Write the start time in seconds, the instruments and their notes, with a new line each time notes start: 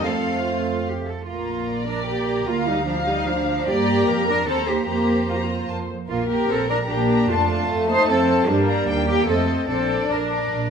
0.05 double bass section F2, viola section A3 C4, violin section F4 F5, cello section A4
0.47 cello section F4
0.88 cello section G4
1.08 cello section A4
1.27 double bass section A#1, viola section A#3, cello section F4, violin section A#5
1.69 violin section D5
1.88 viola section D4, cello section A#4
2.08 viola section A#3, cello section G4
2.48 double bass section D2, viola section A#3, cello section F4, violin section F5
2.68 viola section G3, cello section D#4
2.87 viola section F3, cello section D4, violin section F5
3.07 viola section G3, cello section D#4
3.26 viola section F3, cello section D4
3.67 double bass section G2, viola section A#3, cello section G4, violin section D5 A#5
4.06 double bass section F2, violin section A#4
4.28 viola section D4, cello section A#4
4.47 double bass section D#2, viola section C4, cello section A4, violin section C5 A#5
4.67 viola section A#3, cello section G4
4.87 double bass section F2, viola section A#3, cello section G4, violin section C5 A#5
5.28 viola section A#3, cello section F4, violin section A#5
5.36 cello section G4
5.43 cello section F4
5.69 double bass section F2, violin section A5
6.09 double bass section A#1, viola section A#3, cello section F4, violin section A#4
6.29 viola section A#3, cello section G4, violin section A#5
6.49 double bass section A#1, viola section C4, cello section A4
6.70 viola section D4, cello section A#4, violin section A#5
6.89 double bass section A#1, viola section A#3, violin section D4, cello section G4
7.10 violin section A#5
7.29 double bass section F2, viola section A3, cello section F4, violin section A5
7.49 violin section A5
7.69 double bass section F2, violin section A3
7.89 viola section D#4, cello section C5, violin section A5
8.09 double bass section F2, viola section C4, cello section A4
8.30 violin section A5
8.48 double bass section G2, viola section G3, violin section A#3, cello section D4
8.70 violin section A#5
8.88 double bass section D#2, violin section A#3 G5
9.08 viola section A#3, cello section G4, violin section G5
9.28 double bass section F2, violin section A3 D#5, viola section C4, cello section A4
9.49 violin section D#5
9.68 double bass section A#1, viola section C4, violin section D4 D5, cello section A4
9.90 violin section D5
10.09 double bass section A#1, viola section D4, cello section A#4
10.31 violin section D5
10.51 double bass section A#1